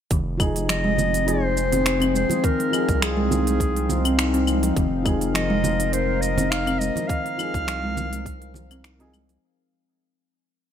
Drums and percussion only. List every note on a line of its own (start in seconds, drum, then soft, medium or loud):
0.11 kick loud
0.11 open hi-hat medium
0.11 shaker soft
0.40 kick medium
0.40 high conga medium
0.40 claves medium
0.40 shaker medium
0.56 open hi-hat soft
0.56 shaker soft
0.69 finger snap medium
0.69 open hi-hat medium
0.69 shaker soft
0.98 low conga medium
0.98 shaker medium
1.14 open hi-hat soft
1.14 shaker soft
1.28 open hi-hat medium
1.28 shaker soft
1.57 shaker medium
1.72 open hi-hat soft
1.72 low conga medium
1.72 shaker soft
1.86 finger snap medium
1.86 open hi-hat medium
1.86 shaker soft
2.00 open hi-hat soft
2.00 muted conga soft
2.00 claves medium
2.15 shaker medium
2.29 open hi-hat soft
2.29 muted conga medium
2.29 low conga medium
2.29 shaker soft
2.44 kick loud
2.44 open hi-hat medium
2.44 shaker soft
2.59 open hi-hat soft
2.59 muted conga soft
2.73 claves medium
2.73 shaker medium
2.89 kick loud
2.89 open hi-hat soft
2.89 shaker soft
3.02 finger snap loud
3.02 open hi-hat medium
3.02 shaker soft
3.31 low conga medium
3.31 shaker medium
3.47 open hi-hat soft
3.47 high conga medium
3.47 shaker soft
3.60 kick medium
3.60 open hi-hat soft
3.60 shaker soft
3.76 open hi-hat soft
3.89 low conga medium
3.89 shaker medium
4.05 open hi-hat soft
4.05 claves medium
4.05 shaker soft
4.19 finger snap medium
4.19 open hi-hat medium
4.19 shaker soft
4.34 open hi-hat soft
4.47 high conga medium
4.47 claves medium
4.47 shaker medium
4.63 open hi-hat soft
4.63 muted conga medium
4.63 shaker soft
4.77 kick loud
4.77 open hi-hat medium
4.77 shaker soft
5.06 kick loud
5.06 high conga medium
5.06 claves medium
5.06 shaker medium
5.21 open hi-hat soft
5.21 shaker soft
5.35 finger snap loud
5.35 open hi-hat soft
5.35 shaker soft
5.64 low conga loud
5.64 shaker medium
5.80 open hi-hat soft
5.80 shaker soft
5.93 open hi-hat soft
5.93 shaker soft
6.22 shaker medium
6.38 open hi-hat soft
6.38 low conga loud
6.38 shaker soft
6.52 finger snap medium
6.52 open hi-hat medium
6.52 shaker soft
6.67 open hi-hat soft
6.67 muted conga soft
6.67 claves medium
6.81 shaker medium
6.96 open hi-hat soft
6.96 muted conga medium
6.96 low conga medium
6.96 shaker soft
7.09 kick loud
7.09 open hi-hat medium
7.09 shaker soft
7.25 open hi-hat soft
7.25 muted conga soft
7.39 claves medium
7.39 shaker medium
7.54 kick loud
7.54 open hi-hat soft
7.54 shaker soft
7.68 finger snap loud
7.68 open hi-hat medium
7.68 shaker soft
7.84 high conga soft
7.97 low conga loud
7.97 shaker medium
8.12 open hi-hat soft
8.12 high conga medium
8.12 shaker soft
8.26 kick medium
8.26 open hi-hat soft
8.26 shaker soft
8.42 open hi-hat soft
8.54 low conga medium
8.54 shaker medium
8.71 open hi-hat soft
8.71 claves medium
8.71 shaker soft
8.84 finger snap medium
8.84 open hi-hat medium
8.84 shaker soft
9.00 open hi-hat soft
9.13 high conga soft
9.13 claves medium
9.13 shaker medium
9.29 open hi-hat soft
9.29 muted conga medium
9.29 shaker soft